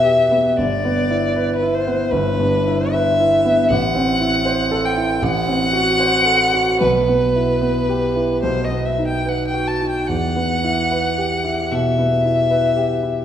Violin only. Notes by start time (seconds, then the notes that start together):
Already playing: E5
0.57 D5
1.56 B4
1.74 C5
2.11 B4
2.92 E5
3.70 F#5
4.85 G5
5.23 F#5
6.81 B4
8.43 C5
8.64 D#5
8.85 E5
9.07 G5
9.28 F#5
9.48 G5
9.67 A5
9.89 G5
10.07 F#5
11.72 E5